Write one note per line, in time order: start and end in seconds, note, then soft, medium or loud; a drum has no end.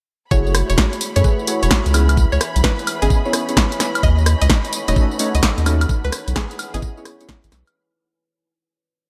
0.31 0.63 F#1 loud
0.31 1.01 A3 loud
0.31 1.01 E4 loud
0.31 4.03 E4 medium
0.31 1.01 F#4 loud
0.31 1.01 G#4 loud
0.31 0.54 C#5 loud
0.31 1.01 C#5 loud
0.31 7.77 B5 medium
0.31 kick loud
0.31 tambourine soft
0.41 1.94 A3 medium
0.47 tambourine soft
0.54 2.81 F#5 medium
0.54 cross-stick medium
0.54 open hi-hat loud
0.54 tambourine medium
0.70 0.76 E1 loud
0.70 0.98 C#5 medium
0.70 closed hi-hat medium
0.70 tambourine soft
0.78 kick loud
0.78 snare loud
0.78 tambourine soft
0.93 closed hi-hat soft
0.93 tambourine soft
1.01 open hi-hat loud
1.01 tambourine medium
1.06 4.79 G#5 medium
1.16 1.22 F#2 loud
1.16 1.23 A3 medium
1.16 1.23 E4 medium
1.16 1.23 F#4 medium
1.16 1.23 G#4 medium
1.16 1.44 C#5 medium
1.16 1.23 C#5 loud
1.16 closed hi-hat medium
1.16 tambourine soft
1.24 1.36 A3 loud
1.24 1.35 E4 medium
1.24 1.36 F#4 medium
1.24 1.36 G#4 medium
1.24 1.35 B4 loud
1.24 kick loud
1.24 tambourine soft
1.39 tambourine soft
1.47 1.92 A3 medium
1.47 1.92 E4 medium
1.47 1.92 F#4 medium
1.47 1.92 G#4 medium
1.47 1.92 C#5 loud
1.47 open hi-hat loud
1.47 tambourine medium
1.63 1.69 E1 medium
1.63 1.85 C#5 loud
1.63 closed hi-hat medium
1.63 tambourine soft
1.71 kick loud
1.71 snare loud
1.71 tambourine soft
1.86 2.26 C#2 loud
1.86 closed hi-hat medium
1.86 tambourine soft
1.94 2.05 B3 medium
1.94 2.05 C#4 medium
1.94 2.05 E4 medium
1.94 2.05 G#4 medium
1.94 2.05 B4 loud
1.94 cross-stick soft
1.94 open hi-hat loud
1.94 tambourine medium
1.94 high woodblock medium
2.09 closed hi-hat medium
2.09 tambourine soft
2.09 high woodblock medium
2.13 4.79 B4 medium
2.17 kick loud
2.17 tambourine soft
2.29 2.38 C#2 medium
2.29 7.75 C#5 medium
2.29 2.55 C#5 loud
2.29 tambourine soft
2.41 cross-stick medium
2.41 open hi-hat loud
2.41 tambourine medium
2.56 2.62 B1 loud
2.56 closed hi-hat medium
2.56 tambourine soft
2.64 2.87 B4 loud
2.64 kick loud
2.64 snare loud
2.64 tambourine soft
2.79 closed hi-hat soft
2.79 tambourine soft
2.87 open hi-hat loud
2.87 tambourine medium
2.87 high woodblock medium
3.02 3.08 G#1 medium
3.02 3.08 B3 medium
3.02 3.08 C#4 medium
3.02 3.08 E4 medium
3.02 3.97 G#4 medium
3.02 3.08 G#4 medium
3.02 3.08 D#5 loud
3.02 closed hi-hat medium
3.02 tambourine soft
3.10 kick loud
3.10 tambourine soft
3.25 3.37 B3 medium
3.25 3.37 C#4 medium
3.25 3.37 E4 medium
3.25 3.37 G#4 medium
3.25 3.36 C#5 loud
3.25 tambourine soft
3.33 cross-stick medium
3.33 open hi-hat loud
3.33 tambourine medium
3.49 3.55 B3 medium
3.49 3.55 C#4 medium
3.49 3.55 E4 medium
3.49 3.55 G#4 medium
3.49 3.55 C#5 medium
3.49 closed hi-hat medium
3.49 tambourine soft
3.57 kick loud
3.57 snare loud
3.57 tambourine soft
3.72 closed hi-hat medium
3.72 tambourine soft
3.80 cross-stick soft
3.80 snare medium
3.80 open hi-hat loud
3.80 tambourine medium
3.95 closed hi-hat medium
3.95 tambourine soft
3.95 high woodblock medium
4.03 4.35 D#2 loud
4.03 5.89 D#4 medium
4.03 4.26 D#5 loud
4.03 kick loud
4.03 tambourine soft
4.17 5.89 A4 medium
4.17 tambourine soft
4.26 cross-stick medium
4.26 open hi-hat loud
4.26 tambourine medium
4.41 4.48 C#2 loud
4.41 4.70 D#5 medium
4.41 closed hi-hat medium
4.41 tambourine soft
4.46 6.65 F#5 medium
4.46 kick loud
4.46 snare loud
4.46 tambourine soft
4.65 closed hi-hat soft
4.65 tambourine soft
4.73 open hi-hat loud
4.73 tambourine medium
4.88 4.94 D#1 loud
4.88 4.95 A3 medium
4.88 4.95 C#4 medium
4.88 4.95 D#4 medium
4.88 4.95 F#4 medium
4.88 4.95 C#5 medium
4.88 5.16 D#5 medium
4.88 closed hi-hat medium
4.88 tambourine soft
4.96 5.08 A3 loud
4.96 5.08 C#4 medium
4.96 5.08 D#4 medium
4.96 5.08 F#4 medium
4.96 5.08 A4 loud
4.96 kick loud
4.96 tambourine soft
5.11 tambourine soft
5.19 5.64 A3 loud
5.19 5.64 C#4 medium
5.19 5.64 D#4 medium
5.19 5.64 F#4 medium
5.19 5.64 C#5 loud
5.19 open hi-hat loud
5.19 tambourine medium
5.35 5.41 C#2 medium
5.35 5.57 D#5 loud
5.35 closed hi-hat medium
5.35 tambourine soft
5.43 kick loud
5.43 snare loud
5.43 tambourine soft
5.58 5.86 D#2 loud
5.58 closed hi-hat medium
5.58 tambourine soft
5.66 5.77 A3 medium
5.66 5.77 C#4 medium
5.66 5.77 D#4 medium
5.66 5.77 F#4 medium
5.66 5.77 A4 loud
5.66 cross-stick soft
5.66 open hi-hat loud
5.66 tambourine medium
5.66 high woodblock medium
5.81 closed hi-hat medium
5.81 tambourine soft
5.81 high woodblock medium
5.89 7.75 E4 medium
5.89 kick loud
5.89 tambourine soft
6.01 6.10 C#2 medium
6.01 7.76 B4 medium
6.01 6.27 B4 medium
6.01 7.75 G#5 medium
6.01 tambourine soft
6.12 cross-stick medium
6.12 open hi-hat loud
6.12 tambourine medium
6.28 6.34 B1 loud
6.28 closed hi-hat medium
6.28 tambourine soft
6.36 6.59 G#4 loud
6.36 kick loud
6.36 snare loud
6.36 tambourine soft
6.51 closed hi-hat soft
6.51 tambourine soft
6.59 open hi-hat loud
6.59 tambourine medium
6.59 high woodblock medium
6.74 6.80 G#1 loud
6.74 6.80 B3 medium
6.74 6.80 C#4 medium
6.74 6.80 E4 medium
6.74 7.69 G#4 medium
6.74 6.80 G#4 medium
6.74 6.80 D#5 loud
6.74 closed hi-hat medium
6.74 tambourine soft
6.82 kick loud
6.82 tambourine soft
6.97 7.09 B3 medium
6.97 7.09 C#4 medium
6.97 7.09 E4 medium
6.97 7.09 G#4 medium
6.97 7.09 C#5 loud
6.97 tambourine soft
7.05 cross-stick medium
7.05 open hi-hat loud
7.05 tambourine medium
7.21 7.27 B3 medium
7.21 7.27 C#4 medium
7.21 7.27 E4 medium
7.21 7.27 G#4 medium
7.21 7.27 C#5 medium
7.21 closed hi-hat medium
7.21 tambourine soft
7.29 kick loud
7.29 snare loud
7.29 tambourine soft
7.44 7.50 G#1 medium
7.44 closed hi-hat medium
7.44 tambourine soft
7.52 7.63 B1 loud
7.52 cross-stick soft
7.52 snare medium
7.52 open hi-hat loud
7.52 tambourine medium
7.67 closed hi-hat medium
7.67 tambourine soft
7.67 high woodblock medium